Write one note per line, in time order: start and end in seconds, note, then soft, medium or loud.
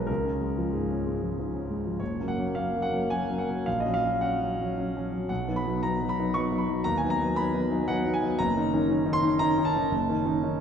0.00 0.11 B1 medium
0.00 0.11 F#3 soft
0.00 0.11 G#3 soft
0.00 0.11 D#4 soft
0.00 0.07 A#4 medium
0.00 0.11 B4 medium
0.07 1.96 C#2 soft
0.07 0.73 A#4 medium
0.25 0.51 C#4 soft
0.41 0.67 G#3 soft
0.58 0.83 F3 soft
0.73 1.00 G#2 soft
0.73 1.38 G#4 soft
0.90 1.16 C#4 soft
1.07 1.32 G#3 soft
1.22 1.48 F3 soft
1.38 1.64 G#2 soft
1.54 1.79 C#4 soft
1.70 1.95 G#3 soft
1.86 2.00 F3 soft
2.00 2.18 F#1 soft
2.00 2.28 C#5 medium
2.20 2.36 F#3 soft
2.20 2.37 A#3 soft
2.20 2.37 C#4 soft
2.28 2.56 F#5 medium
2.38 2.55 F#3 soft
2.38 2.55 A#3 soft
2.38 2.55 C#4 soft
2.55 2.73 F#3 soft
2.55 2.73 A#3 soft
2.55 2.73 C#4 soft
2.55 2.83 F5 medium
2.75 2.91 F#3 soft
2.75 2.91 A#3 soft
2.75 2.91 C#4 soft
2.82 3.10 F#5 medium
2.92 3.09 F#3 soft
2.92 3.09 A#3 soft
2.92 3.09 C#4 soft
3.10 3.28 F#3 soft
3.10 3.28 A#3 soft
3.10 3.28 C#4 soft
3.10 3.38 G#5 medium
3.30 3.46 F#3 soft
3.30 3.47 A#3 soft
3.30 3.47 C#4 soft
3.38 3.66 F#5 medium
3.49 3.65 F#3 soft
3.49 3.66 A#3 soft
3.49 3.66 C#4 soft
3.66 3.85 A#1 soft
3.66 3.80 F5 medium
3.80 3.94 D#5 medium
3.85 4.02 F#3 soft
3.85 4.02 C#4 soft
3.94 4.22 F5 medium
4.04 4.20 F#3 soft
4.04 4.21 C#4 soft
4.21 4.39 F#3 soft
4.21 4.39 C#4 soft
4.21 5.02 F#5 medium
4.41 4.57 F#3 soft
4.41 4.58 C#4 soft
4.60 4.76 F#3 soft
4.60 4.76 C#4 soft
4.77 4.93 F#3 soft
4.77 4.93 C#4 soft
4.96 5.11 F#3 soft
4.96 5.11 C#4 soft
5.13 5.28 F#3 soft
5.13 5.28 C#4 soft
5.29 5.47 B1 medium
5.29 5.56 F#5 medium
5.48 5.64 F#3 soft
5.48 5.64 B3 soft
5.48 5.64 D#4 soft
5.56 5.83 B5 medium
5.66 5.81 F#3 soft
5.66 5.82 B3 soft
5.66 5.82 D#4 soft
5.83 5.99 F#3 soft
5.83 5.99 B3 soft
5.83 5.99 D#4 soft
5.83 6.09 A#5 medium
6.01 6.16 F#3 soft
6.01 6.16 B3 soft
6.01 6.17 D#4 soft
6.09 6.35 B5 medium
6.19 6.34 F#3 soft
6.19 6.34 B3 soft
6.19 6.34 D#4 soft
6.34 6.50 F#3 soft
6.34 6.50 B3 soft
6.34 6.50 D#4 soft
6.34 6.60 C#6 medium
6.51 6.66 F#3 soft
6.51 6.67 B3 soft
6.51 6.67 D#4 soft
6.58 6.84 B5 medium
6.68 6.84 F#3 soft
6.68 6.84 B3 soft
6.68 6.84 D#4 soft
6.84 7.02 D#2 medium
6.84 6.98 A#5 medium
6.97 7.11 G#5 medium
7.03 7.18 F#3 soft
7.03 7.19 B3 soft
7.03 7.19 D#4 soft
7.10 7.36 A#5 medium
7.20 7.35 F#3 medium
7.20 7.36 B3 soft
7.20 7.36 D#4 soft
7.36 7.52 F#3 soft
7.36 7.53 B3 soft
7.36 7.53 D#4 soft
7.36 7.88 B5 medium
7.54 7.69 F#3 soft
7.54 7.69 B3 soft
7.54 7.70 D#4 soft
7.71 7.87 F#3 soft
7.71 7.87 B3 soft
7.71 7.87 D#4 medium
7.88 8.03 F#3 medium
7.88 8.04 B3 soft
7.88 8.04 D#4 medium
7.88 8.14 F#5 medium
8.05 8.20 F#3 soft
8.05 8.21 B3 medium
8.05 8.21 D#4 medium
8.14 8.39 G#5 medium
8.23 8.38 F#3 soft
8.23 8.38 B3 soft
8.23 8.38 D#4 soft
8.39 8.55 F#1 medium
8.39 9.14 A#5 medium
8.56 8.71 D#3 soft
8.56 8.71 C#4 soft
8.56 8.71 D#4 medium
8.73 8.87 D#3 soft
8.73 8.87 C#4 medium
8.73 8.88 D#4 medium
8.89 9.04 D#3 soft
8.89 9.04 C#4 medium
8.89 9.04 D#4 medium
9.05 9.21 D#3 medium
9.05 9.21 C#4 soft
9.05 9.21 D#4 medium
9.13 9.40 C6 loud
9.22 9.38 D#3 medium
9.22 9.39 C#4 medium
9.22 9.39 D#4 medium
9.39 9.56 D#3 medium
9.39 9.56 C#4 medium
9.39 9.57 D#4 medium
9.39 9.66 A#5 loud
9.58 9.73 D#3 medium
9.58 9.74 C#4 medium
9.58 9.74 D#4 medium
9.65 10.61 A5 medium
9.75 9.91 D#3 medium
9.75 9.91 C#4 soft
9.75 9.91 D#4 medium
9.91 10.08 F#1 medium
10.09 10.24 D#3 medium
10.09 10.24 C#4 soft
10.09 10.25 D#4 medium
10.25 10.41 D#3 medium
10.25 10.41 C#4 medium
10.25 10.42 D#4 medium
10.43 10.59 D#3 medium
10.43 10.59 C#4 medium
10.43 10.59 D#4 medium